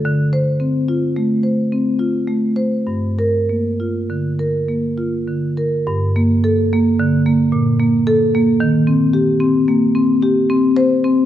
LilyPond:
<<
  \new Staff \with { instrumentName = "Marimba" } { \time 5/4 \key g \minor \tempo 4 = 109 r8 c''4 r2. r8 | r8 bes'4 r2. r8 | r4 a'4 r2 a'4 | r1 c''4 | }
  \new Staff \with { instrumentName = "Marimba" } { \time 5/4 \key g \minor d4 c'8 f'8 a8 c''8 c'8 f'8 a8 c''8 | g,4 bes8 f'8 d8 bes'8 bes8 f'8 d8 bes'8 | g,8 bes4 bes8 d8 bes8 bes,8 bes4 bes8 | ees8 c'8 g'8 c'8 bes8 c'8 g'8 c'4 c'8 | }
>>